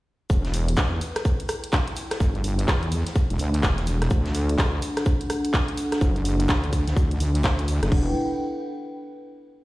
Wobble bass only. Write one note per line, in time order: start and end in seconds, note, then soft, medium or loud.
0.30 0.76 E1 loud
0.77 1.00 E2 loud
2.20 2.67 G1 loud
2.68 3.04 E2 loud
3.30 3.38 E1 loud
3.39 3.62 D2 loud
3.63 4.09 E1 loud
4.11 4.57 D2 loud
4.58 4.81 D2 loud
6.01 6.47 F#1 loud
6.49 6.85 D2 medium
6.87 7.19 D2 loud
7.20 7.43 D2 loud
7.44 7.80 D2 loud
7.83 7.90 F#1 loud
7.92 8.14 E1 medium